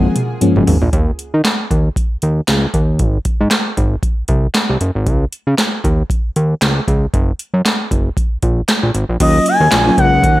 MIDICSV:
0, 0, Header, 1, 6, 480
1, 0, Start_track
1, 0, Tempo, 517241
1, 861, Time_signature, 4, 2, 24, 8
1, 9651, End_track
2, 0, Start_track
2, 0, Title_t, "Analog synth lead"
2, 0, Program_c, 0, 81
2, 0, Note_on_c, 0, 78, 91
2, 391, Note_off_c, 0, 78, 0
2, 8557, Note_on_c, 0, 75, 109
2, 8773, Note_off_c, 0, 75, 0
2, 8797, Note_on_c, 0, 80, 119
2, 9236, Note_off_c, 0, 80, 0
2, 9268, Note_on_c, 0, 78, 117
2, 9651, Note_off_c, 0, 78, 0
2, 9651, End_track
3, 0, Start_track
3, 0, Title_t, "FM electric piano"
3, 0, Program_c, 1, 5
3, 0, Note_on_c, 1, 53, 97
3, 0, Note_on_c, 1, 56, 98
3, 0, Note_on_c, 1, 58, 94
3, 0, Note_on_c, 1, 60, 106
3, 142, Note_off_c, 1, 53, 0
3, 143, Note_off_c, 1, 56, 0
3, 143, Note_off_c, 1, 58, 0
3, 145, Note_off_c, 1, 60, 0
3, 381, Note_on_c, 1, 53, 101
3, 384, Note_on_c, 1, 56, 88
3, 387, Note_on_c, 1, 58, 85
3, 389, Note_on_c, 1, 61, 102
3, 674, Note_off_c, 1, 53, 0
3, 675, Note_off_c, 1, 56, 0
3, 677, Note_off_c, 1, 58, 0
3, 678, Note_off_c, 1, 61, 0
3, 8540, Note_on_c, 1, 54, 73
3, 8542, Note_on_c, 1, 58, 68
3, 8545, Note_on_c, 1, 61, 71
3, 8547, Note_on_c, 1, 65, 85
3, 8914, Note_off_c, 1, 54, 0
3, 8915, Note_off_c, 1, 58, 0
3, 8917, Note_off_c, 1, 61, 0
3, 8918, Note_off_c, 1, 65, 0
3, 9152, Note_on_c, 1, 54, 84
3, 9155, Note_on_c, 1, 58, 79
3, 9157, Note_on_c, 1, 61, 74
3, 9159, Note_on_c, 1, 65, 93
3, 9499, Note_off_c, 1, 54, 0
3, 9500, Note_off_c, 1, 58, 0
3, 9501, Note_off_c, 1, 61, 0
3, 9502, Note_off_c, 1, 65, 0
3, 9651, End_track
4, 0, Start_track
4, 0, Title_t, "Analog synth pad"
4, 0, Program_c, 2, 89
4, 0, Note_on_c, 2, 49, 78
4, 0, Note_on_c, 2, 53, 69
4, 0, Note_on_c, 2, 56, 72
4, 0, Note_on_c, 2, 58, 71
4, 0, Note_on_c, 2, 68, 89
4, 820, Note_off_c, 2, 56, 0
4, 822, Note_off_c, 2, 49, 0
4, 841, Note_off_c, 2, 53, 0
4, 841, Note_off_c, 2, 58, 0
4, 842, Note_off_c, 2, 68, 0
4, 8541, Note_on_c, 2, 63, 76
4, 8542, Note_on_c, 2, 54, 73
4, 8543, Note_on_c, 2, 49, 77
4, 8543, Note_on_c, 2, 58, 79
4, 9651, Note_off_c, 2, 49, 0
4, 9651, Note_off_c, 2, 54, 0
4, 9651, Note_off_c, 2, 58, 0
4, 9651, Note_off_c, 2, 63, 0
4, 9651, End_track
5, 0, Start_track
5, 0, Title_t, "Analog synth bass"
5, 0, Program_c, 3, 38
5, 524, Note_on_c, 3, 30, 104
5, 597, Note_off_c, 3, 30, 0
5, 627, Note_on_c, 3, 32, 97
5, 721, Note_off_c, 3, 32, 0
5, 757, Note_on_c, 3, 34, 105
5, 832, Note_off_c, 3, 34, 0
5, 863, Note_on_c, 3, 39, 105
5, 1035, Note_off_c, 3, 39, 0
5, 1242, Note_on_c, 3, 51, 92
5, 1316, Note_off_c, 3, 51, 0
5, 1585, Note_on_c, 3, 39, 89
5, 1755, Note_off_c, 3, 39, 0
5, 2068, Note_on_c, 3, 39, 86
5, 2238, Note_off_c, 3, 39, 0
5, 2307, Note_on_c, 3, 37, 99
5, 2477, Note_off_c, 3, 37, 0
5, 2542, Note_on_c, 3, 39, 86
5, 2782, Note_on_c, 3, 32, 101
5, 2796, Note_off_c, 3, 39, 0
5, 2954, Note_off_c, 3, 32, 0
5, 3160, Note_on_c, 3, 44, 93
5, 3234, Note_off_c, 3, 44, 0
5, 3500, Note_on_c, 3, 32, 90
5, 3672, Note_off_c, 3, 32, 0
5, 3978, Note_on_c, 3, 36, 90
5, 4151, Note_off_c, 3, 36, 0
5, 4356, Note_on_c, 3, 36, 94
5, 4432, Note_off_c, 3, 36, 0
5, 4461, Note_on_c, 3, 30, 89
5, 4558, Note_off_c, 3, 30, 0
5, 4596, Note_on_c, 3, 32, 93
5, 4700, Note_on_c, 3, 37, 105
5, 4714, Note_off_c, 3, 32, 0
5, 4873, Note_off_c, 3, 37, 0
5, 5075, Note_on_c, 3, 49, 92
5, 5151, Note_off_c, 3, 49, 0
5, 5423, Note_on_c, 3, 39, 90
5, 5594, Note_off_c, 3, 39, 0
5, 5904, Note_on_c, 3, 39, 81
5, 6075, Note_off_c, 3, 39, 0
5, 6144, Note_on_c, 3, 37, 91
5, 6315, Note_off_c, 3, 37, 0
5, 6382, Note_on_c, 3, 37, 97
5, 6554, Note_off_c, 3, 37, 0
5, 6624, Note_on_c, 3, 30, 103
5, 6795, Note_off_c, 3, 30, 0
5, 6993, Note_on_c, 3, 42, 90
5, 7070, Note_off_c, 3, 42, 0
5, 7343, Note_on_c, 3, 30, 80
5, 7514, Note_off_c, 3, 30, 0
5, 7823, Note_on_c, 3, 34, 78
5, 7995, Note_off_c, 3, 34, 0
5, 8195, Note_on_c, 3, 34, 91
5, 8271, Note_off_c, 3, 34, 0
5, 8301, Note_on_c, 3, 32, 93
5, 8398, Note_off_c, 3, 32, 0
5, 8436, Note_on_c, 3, 34, 95
5, 8512, Note_off_c, 3, 34, 0
5, 8542, Note_on_c, 3, 39, 112
5, 8714, Note_off_c, 3, 39, 0
5, 8913, Note_on_c, 3, 39, 109
5, 8990, Note_off_c, 3, 39, 0
5, 9021, Note_on_c, 3, 34, 105
5, 9193, Note_off_c, 3, 34, 0
5, 9261, Note_on_c, 3, 37, 90
5, 9498, Note_on_c, 3, 39, 104
5, 9512, Note_off_c, 3, 37, 0
5, 9651, Note_off_c, 3, 39, 0
5, 9651, End_track
6, 0, Start_track
6, 0, Title_t, "Drums"
6, 144, Note_on_c, 9, 42, 73
6, 147, Note_on_c, 9, 47, 82
6, 237, Note_off_c, 9, 42, 0
6, 240, Note_off_c, 9, 47, 0
6, 383, Note_on_c, 9, 42, 87
6, 387, Note_on_c, 9, 45, 101
6, 476, Note_off_c, 9, 42, 0
6, 480, Note_off_c, 9, 45, 0
6, 520, Note_on_c, 9, 45, 86
6, 612, Note_off_c, 9, 45, 0
6, 625, Note_on_c, 9, 43, 121
6, 626, Note_on_c, 9, 46, 79
6, 718, Note_off_c, 9, 43, 0
6, 719, Note_off_c, 9, 46, 0
6, 757, Note_on_c, 9, 43, 97
6, 850, Note_off_c, 9, 43, 0
6, 863, Note_on_c, 9, 42, 76
6, 864, Note_on_c, 9, 36, 98
6, 955, Note_off_c, 9, 42, 0
6, 957, Note_off_c, 9, 36, 0
6, 1103, Note_on_c, 9, 42, 72
6, 1196, Note_off_c, 9, 42, 0
6, 1342, Note_on_c, 9, 38, 98
6, 1345, Note_on_c, 9, 42, 80
6, 1349, Note_on_c, 9, 39, 81
6, 1435, Note_off_c, 9, 38, 0
6, 1437, Note_off_c, 9, 42, 0
6, 1442, Note_off_c, 9, 39, 0
6, 1584, Note_on_c, 9, 36, 90
6, 1587, Note_on_c, 9, 42, 72
6, 1677, Note_off_c, 9, 36, 0
6, 1680, Note_off_c, 9, 42, 0
6, 1821, Note_on_c, 9, 36, 96
6, 1828, Note_on_c, 9, 42, 79
6, 1914, Note_off_c, 9, 36, 0
6, 1920, Note_off_c, 9, 42, 0
6, 2060, Note_on_c, 9, 42, 64
6, 2153, Note_off_c, 9, 42, 0
6, 2298, Note_on_c, 9, 42, 86
6, 2301, Note_on_c, 9, 38, 105
6, 2308, Note_on_c, 9, 39, 80
6, 2390, Note_off_c, 9, 42, 0
6, 2394, Note_off_c, 9, 38, 0
6, 2401, Note_off_c, 9, 39, 0
6, 2541, Note_on_c, 9, 36, 83
6, 2541, Note_on_c, 9, 42, 74
6, 2634, Note_off_c, 9, 36, 0
6, 2634, Note_off_c, 9, 42, 0
6, 2776, Note_on_c, 9, 42, 72
6, 2781, Note_on_c, 9, 36, 106
6, 2869, Note_off_c, 9, 42, 0
6, 2874, Note_off_c, 9, 36, 0
6, 3016, Note_on_c, 9, 42, 75
6, 3019, Note_on_c, 9, 36, 88
6, 3109, Note_off_c, 9, 42, 0
6, 3112, Note_off_c, 9, 36, 0
6, 3256, Note_on_c, 9, 38, 96
6, 3258, Note_on_c, 9, 42, 82
6, 3262, Note_on_c, 9, 39, 80
6, 3348, Note_off_c, 9, 38, 0
6, 3351, Note_off_c, 9, 42, 0
6, 3355, Note_off_c, 9, 39, 0
6, 3501, Note_on_c, 9, 36, 89
6, 3502, Note_on_c, 9, 42, 74
6, 3594, Note_off_c, 9, 36, 0
6, 3595, Note_off_c, 9, 42, 0
6, 3737, Note_on_c, 9, 36, 94
6, 3740, Note_on_c, 9, 42, 77
6, 3830, Note_off_c, 9, 36, 0
6, 3833, Note_off_c, 9, 42, 0
6, 3971, Note_on_c, 9, 42, 62
6, 3979, Note_on_c, 9, 36, 90
6, 4064, Note_off_c, 9, 42, 0
6, 4072, Note_off_c, 9, 36, 0
6, 4215, Note_on_c, 9, 42, 83
6, 4219, Note_on_c, 9, 38, 107
6, 4225, Note_on_c, 9, 39, 86
6, 4308, Note_off_c, 9, 42, 0
6, 4311, Note_off_c, 9, 38, 0
6, 4318, Note_off_c, 9, 39, 0
6, 4461, Note_on_c, 9, 42, 69
6, 4554, Note_off_c, 9, 42, 0
6, 4701, Note_on_c, 9, 36, 104
6, 4701, Note_on_c, 9, 42, 76
6, 4794, Note_off_c, 9, 36, 0
6, 4794, Note_off_c, 9, 42, 0
6, 4941, Note_on_c, 9, 42, 74
6, 5034, Note_off_c, 9, 42, 0
6, 5181, Note_on_c, 9, 38, 94
6, 5183, Note_on_c, 9, 42, 88
6, 5187, Note_on_c, 9, 39, 77
6, 5273, Note_off_c, 9, 38, 0
6, 5276, Note_off_c, 9, 42, 0
6, 5280, Note_off_c, 9, 39, 0
6, 5422, Note_on_c, 9, 36, 88
6, 5425, Note_on_c, 9, 42, 74
6, 5515, Note_off_c, 9, 36, 0
6, 5518, Note_off_c, 9, 42, 0
6, 5659, Note_on_c, 9, 36, 97
6, 5667, Note_on_c, 9, 42, 80
6, 5752, Note_off_c, 9, 36, 0
6, 5759, Note_off_c, 9, 42, 0
6, 5902, Note_on_c, 9, 42, 63
6, 5995, Note_off_c, 9, 42, 0
6, 6138, Note_on_c, 9, 42, 78
6, 6142, Note_on_c, 9, 38, 103
6, 6149, Note_on_c, 9, 39, 83
6, 6231, Note_off_c, 9, 42, 0
6, 6235, Note_off_c, 9, 38, 0
6, 6242, Note_off_c, 9, 39, 0
6, 6382, Note_on_c, 9, 36, 86
6, 6385, Note_on_c, 9, 42, 69
6, 6475, Note_off_c, 9, 36, 0
6, 6478, Note_off_c, 9, 42, 0
6, 6623, Note_on_c, 9, 36, 106
6, 6623, Note_on_c, 9, 42, 74
6, 6715, Note_off_c, 9, 36, 0
6, 6716, Note_off_c, 9, 42, 0
6, 6861, Note_on_c, 9, 42, 76
6, 6954, Note_off_c, 9, 42, 0
6, 7104, Note_on_c, 9, 38, 98
6, 7107, Note_on_c, 9, 42, 81
6, 7111, Note_on_c, 9, 39, 80
6, 7197, Note_off_c, 9, 38, 0
6, 7199, Note_off_c, 9, 42, 0
6, 7204, Note_off_c, 9, 39, 0
6, 7342, Note_on_c, 9, 36, 89
6, 7346, Note_on_c, 9, 42, 82
6, 7435, Note_off_c, 9, 36, 0
6, 7439, Note_off_c, 9, 42, 0
6, 7580, Note_on_c, 9, 36, 99
6, 7586, Note_on_c, 9, 42, 79
6, 7673, Note_off_c, 9, 36, 0
6, 7679, Note_off_c, 9, 42, 0
6, 7818, Note_on_c, 9, 42, 62
6, 7821, Note_on_c, 9, 36, 91
6, 7911, Note_off_c, 9, 42, 0
6, 7914, Note_off_c, 9, 36, 0
6, 8057, Note_on_c, 9, 42, 80
6, 8061, Note_on_c, 9, 38, 106
6, 8067, Note_on_c, 9, 39, 80
6, 8150, Note_off_c, 9, 42, 0
6, 8154, Note_off_c, 9, 38, 0
6, 8160, Note_off_c, 9, 39, 0
6, 8301, Note_on_c, 9, 42, 68
6, 8394, Note_off_c, 9, 42, 0
6, 8539, Note_on_c, 9, 42, 87
6, 8540, Note_on_c, 9, 49, 108
6, 8541, Note_on_c, 9, 36, 115
6, 8632, Note_off_c, 9, 42, 0
6, 8632, Note_off_c, 9, 49, 0
6, 8633, Note_off_c, 9, 36, 0
6, 8778, Note_on_c, 9, 42, 88
6, 8871, Note_off_c, 9, 42, 0
6, 9016, Note_on_c, 9, 38, 107
6, 9018, Note_on_c, 9, 42, 95
6, 9023, Note_on_c, 9, 39, 92
6, 9109, Note_off_c, 9, 38, 0
6, 9111, Note_off_c, 9, 42, 0
6, 9115, Note_off_c, 9, 39, 0
6, 9260, Note_on_c, 9, 36, 95
6, 9262, Note_on_c, 9, 42, 82
6, 9353, Note_off_c, 9, 36, 0
6, 9354, Note_off_c, 9, 42, 0
6, 9497, Note_on_c, 9, 36, 107
6, 9500, Note_on_c, 9, 42, 92
6, 9590, Note_off_c, 9, 36, 0
6, 9592, Note_off_c, 9, 42, 0
6, 9651, End_track
0, 0, End_of_file